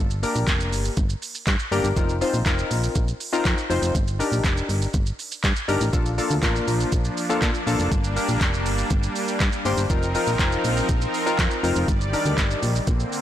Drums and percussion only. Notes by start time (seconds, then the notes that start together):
0.10 shaker
0.23 open hi-hat, shaker
0.35 shaker
0.48 kick, clap, closed hi-hat, shaker
0.60 shaker
0.73 open hi-hat, shaker
0.85 shaker
0.97 kick, closed hi-hat, shaker
1.09 shaker
1.22 open hi-hat, shaker
1.35 shaker
1.47 kick, clap, closed hi-hat, shaker
1.59 shaker
1.72 open hi-hat, shaker
1.84 shaker
1.97 kick, closed hi-hat, shaker
2.09 shaker
2.22 open hi-hat, shaker
2.34 shaker
2.46 kick, clap, closed hi-hat, shaker
2.59 shaker
2.71 open hi-hat, shaker
2.83 shaker
2.95 kick, closed hi-hat, shaker
3.08 shaker
3.20 open hi-hat, shaker
3.33 shaker
3.45 kick, clap, closed hi-hat, shaker
3.58 shaker
3.70 open hi-hat, shaker
3.83 shaker
3.95 kick, closed hi-hat, shaker
4.07 shaker
4.20 open hi-hat, shaker
4.32 shaker
4.44 kick, clap, closed hi-hat, shaker
4.57 shaker
4.69 open hi-hat, shaker
4.82 shaker
4.94 kick, closed hi-hat, shaker
5.06 shaker
5.19 open hi-hat, shaker
5.32 shaker
5.44 kick, clap, closed hi-hat, shaker
5.56 shaker
5.69 open hi-hat, shaker
5.81 shaker
5.93 kick, closed hi-hat, shaker
6.06 shaker
6.18 open hi-hat, shaker
6.30 shaker
6.43 kick, clap, closed hi-hat, shaker
6.56 shaker
6.68 open hi-hat, shaker
6.80 shaker
6.92 kick, closed hi-hat, shaker
7.05 shaker
7.17 open hi-hat, shaker
7.30 shaker
7.42 kick, clap, closed hi-hat, shaker
7.54 shaker
7.67 open hi-hat, shaker
7.79 shaker
7.92 kick, closed hi-hat, shaker
8.04 shaker
8.16 open hi-hat, shaker
8.29 shaker
8.41 kick, clap, closed hi-hat, shaker
8.54 shaker
8.66 open hi-hat, shaker
8.78 shaker
8.90 kick, closed hi-hat, shaker
9.03 shaker
9.16 open hi-hat, shaker
9.28 shaker
9.40 kick, clap, closed hi-hat, shaker
9.52 shaker
9.65 open hi-hat, shaker
9.78 shaker
9.90 kick, closed hi-hat, shaker
10.02 shaker
10.15 open hi-hat, shaker
10.27 shaker
10.39 kick, clap, closed hi-hat, shaker
10.52 shaker
10.64 open hi-hat, shaker
10.77 shaker
10.89 kick, closed hi-hat, shaker
11.01 shaker
11.14 open hi-hat, shaker
11.27 shaker
11.39 kick, clap, closed hi-hat, shaker
11.51 shaker
11.64 open hi-hat, shaker
11.76 shaker
11.88 kick, closed hi-hat, shaker
12.01 shaker
12.13 open hi-hat, shaker
12.26 shaker
12.38 kick, clap, closed hi-hat, shaker
12.51 shaker
12.63 open hi-hat, shaker
12.75 shaker
12.87 kick, closed hi-hat, shaker
13.00 shaker
13.12 open hi-hat, shaker